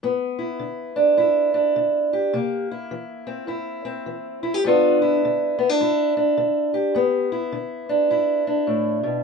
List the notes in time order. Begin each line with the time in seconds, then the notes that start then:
0.03 G2 B3
0.39 E4
0.59 D3
0.96 D4
1.17 G2 E4
1.54 D4
1.76 D3
2.13 G4
2.33 C3 A#3
2.71 E4
2.91 E3
3.27 C4
3.47 G2 E4
3.85 C4
4.06 E3
4.43 E4
4.54 G4
4.64 G2 D3 B3 D4 F4
5.02 E4
5.25 D3
5.59 B3
5.69 D4
5.80 G2 E4
6.17 D4
6.37 D3
6.74 G4
6.95 G2 B3
7.32 E4
7.52 D3
7.89 D4
8.10 G2 E4
8.47 D4
8.67 A2
9.03 B2